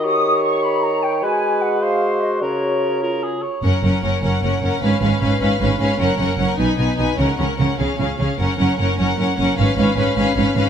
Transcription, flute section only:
X:1
M:6/8
L:1/8
Q:3/8=101
K:F#
V:1 name="Flute section"
d'2 c' b a =g | g2 f e2 d | c4- c z | z6 |
z6 | z6 | z6 | z6 |
z6 |]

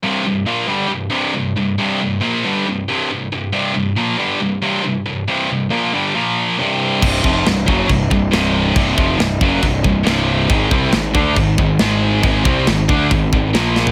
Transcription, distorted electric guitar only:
X:1
M:4/4
L:1/8
Q:1/4=138
K:Cm
V:1 name="Distorted electric guitar" clef=bass
[C,,G,,C,] [C,,G,,] [B,,F,B,] [G,,D,G,] [C,,G,,] [C,,G,,C,] [C,,G,,] [C,,G,,] | [C,,G,,C,] [C,,G,,] [B,,F,B,] [G,,D,G,] [C,,G,,] [C,,G,,C,] [C,,G,,] [C,,G,,] | [C,,G,,C,] [C,,G,,] [B,,F,B,] [G,,D,G,] [C,,G,,] [C,,G,,C,] [C,,G,,] [C,,G,,] | [C,,G,,C,] [C,,G,,] [B,,F,B,] [G,,D,G,] [B,,F,B,]2 [C,,G,,C,]2 |
[C,,G,,C,] [F,,C,F,] [C,,G,,] [^F,,_D,^F,] [C,,G,,] [C,,G,,] [C,,G,,C,]2 | [C,,G,,C,] [F,,C,F,] [C,,G,,] [^F,,_D,^F,] [C,,G,,] [C,,G,,] [C,,G,,C,]2 | [A,,E,A,] [C,G,C] [A,,E,] [D,=A,D] [_A,,E,] [A,,E,] [A,,E,_A,]2 | [A,,E,A,] [C,G,C] [A,,E,] [D,=A,D] [_A,,E,] [A,,E,] [B,,F,B,]2 |]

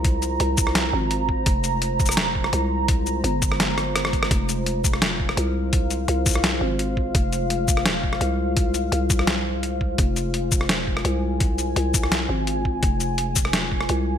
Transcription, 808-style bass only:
X:1
M:4/4
L:1/8
Q:1/4=169
K:Fm
V:1 name="808-style bass" clef=bass
C,,2 C,,3 A,,,3 | F,,,6 C,,2- | C,,2 G,,,6 | F,,,6 C,,2- |
C,,2 C,,3 A,,,3 | F,,,6 C,,2- | C,,2 C,,6 | F,,,6 C,,2- |
C,,2 C,,3 A,,,3 | F,,,6 C,,2 |]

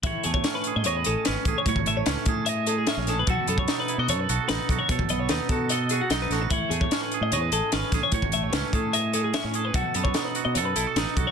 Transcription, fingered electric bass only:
X:1
M:4/4
L:1/16
Q:1/4=148
K:Alyd
V:1 name="Fingered electric bass" clef=bass
A,,, z E,,2 z3 A,, E,,2 A,,, z G,,, z A,,, z | A,, G,,, A,,,2 C,, z A,,6- A,, _B,,,3 | B,,, z F,,2 z3 B,, F,,2 B,,, z A,,, z B,,, z | B,, A,,, B,,,2 D,, z B,,6 B,,,2 A,,,2 |
A,,, z E,,2 z3 A,, E,,2 A,,, z G,,, z A,,, z | A,, G,,, A,,,2 C,, z A,,6- A,, A,,3 | B,,, z F,,2 z3 B,, F,,2 B,,, z A,,, z B,,, z |]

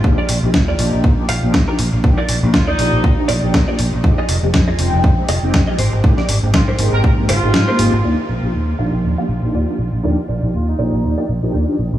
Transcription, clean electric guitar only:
X:1
M:4/4
L:1/16
Q:"Swing 16ths" 1/4=120
K:Cm
V:1 name="Clean electric guitar"
z [FGd] z3 [FGd]3 z2 [FGf] z2 [FGB] z2 | z [EFBd] z3 [EFBd]3 z2 [EFBd] z2 [EFBd] z2 | z [FAe] z3 [FAe]3 z2 [FAe] z2 [FAe] [GBc]2 | z [GBd] z3 [GBc]3 z2 [GBc] z2 [GBc] z2 |
[FGd] z [FGB]2 z2 [FGf] z2 [FGf] z2 [FGd]2 z2 | [EFBd] z [EFBd]2 z2 [EFBd] z2 [EFBd] z2 [EFBd]2 z2 |]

